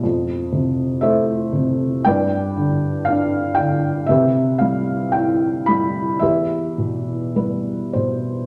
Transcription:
<<
  \new Staff \with { instrumentName = "Felt piano" } { \time 4/4 \key e \phrygian \tempo 4 = 57 << { r4 e''4 g''4 f''8 g''8 | e''8 f''8 g''8 b''8 e''4 b'8 c''8 | } \\ { r4 <a' c''>4 <b' d''>2 | <g' b'>2 <g' b'>2 | } >> }
  \new Staff \with { instrumentName = "Felt piano" } { \clef bass \time 4/4 \key e \phrygian f,8 c8 a8 c8 g,8 d8 d'8 d8 | c8 g8 e'8 g8 e,8 b,8 g8 b,8 | }
>>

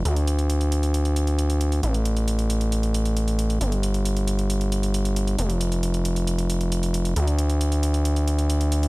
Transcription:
<<
  \new Staff \with { instrumentName = "Analog synth bass" } { \clef bass \time 4/4 \key d \dorian \tempo 4 = 135 d,1 | a,,1 | g,,1 | f,,1 |
d,1 | }
  \new DrumStaff \with { instrumentName = "Drums" } \drummode { \time 4/4 hh16 hh16 hh16 hh16 hh16 hh16 hh16 hh16 hh16 hh16 hh16 hh16 hh16 hh16 hh16 hh16 | hh16 hh16 hh16 hh16 hh16 hh16 hh16 hh16 hh16 hh16 hh16 hh16 hh16 hh16 hh16 hh16 | hh16 hh16 hh16 hh16 hh16 hh16 hh16 hh16 hh16 hh16 hh16 hh16 hh16 hh16 hh16 hh16 | hh16 hh16 hh16 hh16 hh16 hh16 hh16 hh16 hh16 hh16 hh16 hh16 hh16 hh16 hh16 hh16 |
hh16 hh16 hh16 hh16 hh16 hh16 hh16 hh16 hh16 hh16 hh16 hh16 hh16 hh16 hh16 hh16 | }
>>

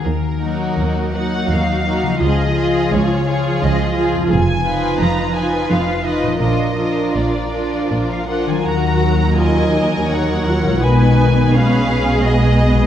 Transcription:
<<
  \new Staff \with { instrumentName = "Violin section" } { \time 3/4 \key ees \minor \tempo 4 = 84 bes'4. ges''8 f''4 | ees''4 des''4 ees''8 r8 | aes''4 bes''8 aes''8 f''8 ees''8 | ees''4 d''4~ d''16 f''16 ges''16 aes''16 |
\key dis \minor ais''4 gis''4 fis''4 | gis''4 eis''4 dis''4 | }
  \new Staff \with { instrumentName = "Violin section" } { \time 3/4 \key ees \minor << { r8 ges'4 ges'4 ges'8 | aes'8 aes'4 aes'4 aes'8 | r8 ces''4 ces''4 ces''8 | bes'8 bes'4 bes'4 bes'8 |
\key dis \minor ais'4 dis''4 cis''4 | b'4 b'4 dis''4 | } \\ { r8 ees'4 ees'4 ees'8 | f'8 f'4 f'4 f'8 | r8 f'4 f'4 f'8 | f'8 f'4 f'4 f'8 |
fis'4 ais'2 | b'4 gis'2 | } >> }
  \new Staff \with { instrumentName = "Harp" } { \time 3/4 \key ees \minor <ees bes ees' ges'>2. | <des f f' aes'>2. | <f, f ees' ces''>2. | <bes, f f' bes'>2. |
\key dis \minor <dis fis dis' ais'>2. | <b, gis dis' b'>2. | }
  \new Staff \with { instrumentName = "Viola section" } { \time 3/4 \key ees \minor << { r8 bes4 bes4 bes8 | f'8 f'4 f'4 f'8 | r8 ees'4 ees'4 ees'8 | d'8 d'4 d'4 d'8 |
\key dis \minor fis'4 eis'8 dis'8 dis'8 eis'8 | dis'4 cis'4 b8 b8 | } \\ { r8 ges4 ges4 ges8 | f8 f4 f4 f8 | r8 f4 f4 f8 | f8 f4 f4 f8 |
dis8 fis4. fis4 | dis4 gis8 gis4. | } >> }
  \new Staff \with { instrumentName = "Cello section" } { \clef bass \time 3/4 \key ees \minor ees,4 ees,4 ees,4 | des,4 des,4 des,4 | f,4 f,4 f,4 | bes,4 bes,4 bes,4 |
\key dis \minor dis,2. | b,2. | }
  \new Staff \with { instrumentName = "Double bass section" } { \clef bass \time 3/4 \key ees \minor ees,4 ees,4 ees,4 | des,4 des,4 des,4 | f,,4 f,,4 f,,4 | bes,,4 bes,,4 bes,,4 |
\key dis \minor dis,2. | b,,2. | }
>>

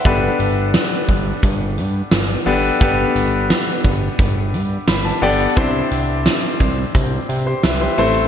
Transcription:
<<
  \new Staff \with { instrumentName = "Grand piano" } { \time 4/4 \key g \major \tempo 4 = 87 << { e''16 r2. r8. | r2. b''16 a''16 g''8 | r2 r8. <g' c''>16 <b' e''>16 <g' c''>8 r16 | } \\ { <b d' g' a' b'>2 r4. <b d' g' a' b'>8 | <b d' g' a' b'>2 r4. <b d' g' a' d''>8 | <c' d' e' g' c''>2 r4. <a c' e' a' c''>8 | } >> }
  \new Staff \with { instrumentName = "Analog synth bass" } { \clef bass \time 4/4 \key g \major g,,8 g,,8. r16 g,,8 g,,8 g,8 g,,8 g,,8 | g,,8 g,,8. r16 g,,8 g,,8 g,8 g,,8 g,,8 | c,8 c,8. r16 c,8 c,8 c8 c,8 a,,8 | }
  \new DrumStaff \with { instrumentName = "Drums" } \drummode { \time 4/4 <hh bd>8 hh8 <hh sn tamb>8 <hh bd>8 <hh bd>8 hh8 <hh sn tamb>8 hho8 | <hh bd>8 hh8 <hh sn tamb>8 <hh bd>8 <hh bd>8 hh8 <hh sn tamb>8 hho8 | <hh bd>8 hh8 <hh sn tamb>8 <hh bd>8 <hh bd>8 hh8 <hh sn tamb>8 hho8 | }
>>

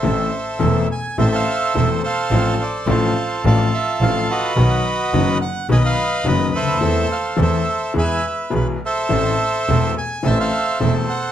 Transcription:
<<
  \new Staff \with { instrumentName = "Bandoneon" } { \time 4/4 \key a \minor \tempo 4 = 106 << { e''4. gis''8 a''16 f''8. e''8 f''8~ | f''8 d''8 c''4 d''8 e''8 f''8 dis''8~ | dis''4. fis''8 gis''16 f''8. dis''8 e''8~ | e''8 f''8 e''4 gis''8 e''8 b'8 e''8~ |
e''4. gis''8 a''16 f''8. e''8 fis''8 | } \\ { <a' c''>4. r8 <c'' e''>16 <a' c''>4~ <a' c''>16 <a' c''>8~ | <a' c''>4 <f' a'>4 <f' a'>4. <fis' b'>8~ | <fis' b'>4. r8 <b' dis''>16 b'4~ b'16 <a' c''>8~ | <a' c''>4 <a' c''>4 <b' e''>4. <a' c''>8~ |
<a' c''>4. r8 <c'' e''>16 <a' c''>4.~ <a' c''>16 | } >> }
  \new Staff \with { instrumentName = "Grand piano" } { \clef bass \time 4/4 \key a \minor <a,, a, e a c' a'>8 r8 <e,, e, e a c' a'>8 r8 <a,, a, e a c' a'>8 r8 <e,, e, e a c' a'>8 r8 | <a,, a, f a c' a'>8 r8 <a,, a, f a c' a'>8 r8 <a,, a, f a c' a'>8 r8 <a,, a, f a c' a'>8 r8 | <b,, b, dis fis b fis'>8 r8 <fis,, fis, dis fis b fis'>8 r8 <b,, b, dis fis b fis'>8 r8 <fis,, fis, dis fis b fis'>8 r32 cis,32 d,32 dis,32 | <e, e a c' a'>8 r8 <e, e a c' a'>8 r8 <e, e gis b gis'>8 r8 <b,, b, e gis b gis'>8 r8 |
<a,, a, e a c' a'>8 r8 <e,, e, e a c' a'>8 r8 <a,, a, e a c' a'>8 r8 <e,, e, e a c' a'>8 r8 | }
  \new Staff \with { instrumentName = "Double bass" } { \clef bass \time 4/4 \key a \minor a,,8 r8 e,,8 r8 a,,8 r8 e,,8 r8 | a,,8 r8 a,,8 r8 a,,8 r8 a,,8 r8 | b,,8 r8 fis,,8 r8 b,,8 r8 fis,,8 d,8 | e,8 r8 e,8 r8 e,8 r8 b,,8 r8 |
a,,8 r8 e,,8 r8 a,,8 r8 e,,8 r8 | }
>>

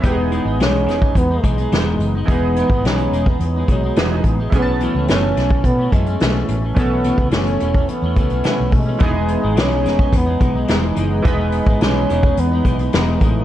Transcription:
<<
  \new Staff \with { instrumentName = "Synth keys" } { \time 4/4 \key e \major \tempo 4 = 107 <e b dis' g' gis'>1 | <e b dis' gis'>2. <e b dis' gis'>4 | <e b cis' gis' a''>1 | <e b cis' a'>1 |
<e b dis' gis'>1 | <e b dis' b'>1 | }
  \new Staff \with { instrumentName = "French horn" } { \time 4/4 \key e \major b4 cis'4 b8 gis4 r8 | b4 cis'8. b16 b8 fis4 r8 | b4 cis'4 b8 gis4 r8 | b4 cis'4 b4. gis8~ |
gis4 cis'4 b4 r8 gis8~ | gis4 cis'4 b4 r8 a8 | }
  \new Staff \with { instrumentName = "Clean electric guitar" } { \time 4/4 \key e \major <e gis b dis'>8 <e gis b dis'>16 <gis b dis'>16 <e gis b dis'>8 <e gis b dis'>16 <gis b dis'>8 <gis b dis'>16 <e gis b dis'>16 <gis b dis'>16 <e gis b dis'>8. <gis b dis'>16 | <e gis b dis'>8 <e gis b dis'>16 <gis b dis'>16 <e gis b dis'>8 <e gis b dis'>16 <gis b dis'>8 <gis b dis'>16 <e gis b dis'>16 <gis b dis'>16 <e gis b dis'>8. <gis b dis'>16 | <b, e a cis'>8 <b, e a cis'>16 <e a cis'>16 <b, e a cis'>8 <b, e a cis'>16 <e a cis'>8 <e a cis'>16 <b, e a cis'>16 <e a cis'>16 <b, e a cis'>8. <e a cis'>16 | <b, e a cis'>8 <b, e a cis'>16 <e a cis'>16 <b, e a cis'>8 <b, e a cis'>16 <e a cis'>8 <e a cis'>16 <b, e a cis'>16 <e a cis'>16 <b, e a cis'>8. <e a cis'>16 |
<e gis b dis'>16 <gis b dis'>8 <gis b dis'>16 <e gis b dis'>16 <gis b dis'>16 <e gis b dis'>16 <gis b dis'>8 <gis b dis'>16 <e gis b dis'>16 <gis b dis'>16 <e gis b dis'>8 <e gis b dis'>8 | <e gis b dis'>16 <gis b dis'>8 <gis b dis'>16 <e gis b dis'>8 <e gis b dis'>16 <gis b dis'>8 <gis b dis'>16 <e gis b dis'>16 <gis b dis'>16 <e gis b dis'>8 <e gis b dis'>8 | }
  \new Staff \with { instrumentName = "Fingered electric bass" } { \clef bass \time 4/4 \key e \major e,,8. gis,,16 b,,8 e,,8 e,8 b,,8 e,,8 fis,,8 | e,,8. gis,,16 b,,8 e,,8 e,8 b,,8 e,,8 a,,8 | b,,8. cis,16 fis,,8 b,,8 b,8 fis,8 b,,8 a,,8 | b,,8. cis,16 fis,,8 e,,8 r16 e,16 cis,16 b,,16 r16 b,,16 b,8 |
e,,8. gis,,16 b,,8 e,,8 e,8 b,,8 e,,8 fis,,8 | e,,8. gis,,16 b,,8 e,,8 e,8 b,,8 e,,8 a,,8 | }
  \new DrumStaff \with { instrumentName = "Drums" } \drummode { \time 4/4 <hh bd>8 hh8 <hh sn>8 <hh sn>16 bd16 <hh bd>8 <hh bd>16 hh16 <hh sn>8 hh8 | <hh bd>8 hh16 bd16 <hh sn>16 hh16 hh16 bd16 hh8 <hh bd>8 <hh sn>8 <hh bd>8 | <hh bd>8 hh8 <hh sn>8 <hh sn>16 bd16 <hh bd>8 <hh bd>16 hh16 <hh sn>8 hh8 | <hh bd>8 hh16 bd16 <hh sn>16 hh16 hh16 bd16 hh8 <hh bd>16 hh16 <hh sn>8 <hho bd>8 |
<hh bd>8 hh8 <hh sn>8 <hh sn>16 bd16 <hh bd>8 <hh bd>8 <hh sn>8 hh8 | <hh bd>8 hh16 bd16 <hh sn>8 hh16 bd16 hh8 <hh bd>16 hh16 <hh sn>8 <hh bd>8 | }
>>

